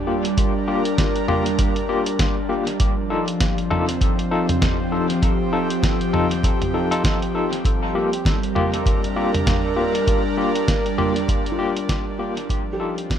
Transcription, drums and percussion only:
0.25 closed hi-hat soft
0.37 kick loud
0.37 closed hi-hat medium
0.85 closed hi-hat soft
0.98 kick loud
0.98 snare medium
0.98 closed hi-hat medium
1.16 closed hi-hat soft
1.28 mid tom medium
1.46 closed hi-hat soft
1.59 kick loud
1.59 closed hi-hat medium
1.76 closed hi-hat soft
2.06 closed hi-hat soft
2.19 kick loud
2.19 snare medium
2.19 closed hi-hat medium
2.67 closed hi-hat soft
2.80 kick loud
2.80 closed hi-hat medium
3.28 closed hi-hat soft
3.40 kick loud
3.40 snare medium
3.40 closed hi-hat medium
3.58 closed hi-hat soft
3.71 mid tom medium
3.89 closed hi-hat soft
4.01 kick loud
4.01 closed hi-hat medium
4.19 closed hi-hat soft
4.49 closed hi-hat soft
4.49 mid tom medium
4.62 kick loud
4.62 snare medium
4.62 closed hi-hat medium
4.62 mid tom medium
5.10 closed hi-hat soft
5.22 kick loud
5.22 closed hi-hat medium
5.70 closed hi-hat soft
5.83 kick loud
5.83 snare medium
5.83 closed hi-hat soft
6.01 closed hi-hat soft
6.14 mid tom medium
6.31 closed hi-hat soft
6.43 kick loud
6.43 closed hi-hat medium
6.62 closed hi-hat soft
6.62 mid tom medium
6.92 closed hi-hat soft
7.04 kick loud
7.04 snare medium
7.04 closed hi-hat medium
7.22 closed hi-hat soft
7.53 closed hi-hat soft
7.65 kick loud
7.65 closed hi-hat soft
8.13 closed hi-hat soft
8.25 kick loud
8.25 snare medium
8.25 closed hi-hat medium
8.43 closed hi-hat soft
8.56 mid tom medium
8.74 closed hi-hat soft
8.86 kick loud
8.86 closed hi-hat soft
9.04 closed hi-hat soft
9.34 closed hi-hat soft
9.34 mid tom medium
9.47 kick loud
9.47 snare medium
9.47 closed hi-hat soft
9.47 mid tom medium
9.95 closed hi-hat soft
10.07 kick loud
10.07 closed hi-hat soft
10.55 closed hi-hat soft
10.68 kick loud
10.68 snare medium
10.68 closed hi-hat soft
10.86 closed hi-hat soft
10.98 mid tom medium
11.16 closed hi-hat soft
11.28 kick loud
11.28 closed hi-hat medium
11.46 closed hi-hat soft
11.77 closed hi-hat soft
11.89 kick loud
11.89 snare medium
11.89 closed hi-hat medium
12.37 closed hi-hat soft
12.49 kick loud
12.49 closed hi-hat medium
12.98 closed hi-hat soft
13.10 kick loud
13.10 snare medium
13.10 closed hi-hat medium

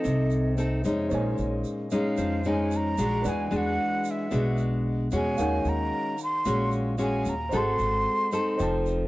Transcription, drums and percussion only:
0.05 shaker medium
0.31 shaker soft
0.58 shaker soft
0.84 shaker medium
1.11 shaker medium
1.38 shaker soft
1.64 shaker soft
1.91 shaker medium
2.17 shaker medium
2.44 shaker soft
2.71 shaker medium
2.98 shaker medium
3.24 shaker medium
3.51 shaker soft
4.04 shaker medium
4.31 shaker medium
4.57 shaker soft
5.11 shaker medium
5.38 shaker medium
5.65 shaker soft
6.18 shaker medium
6.45 shaker medium
6.72 shaker soft
6.98 shaker soft
7.25 shaker medium
7.52 shaker medium
7.79 shaker soft
8.32 shaker medium
8.59 shaker medium
8.86 shaker soft

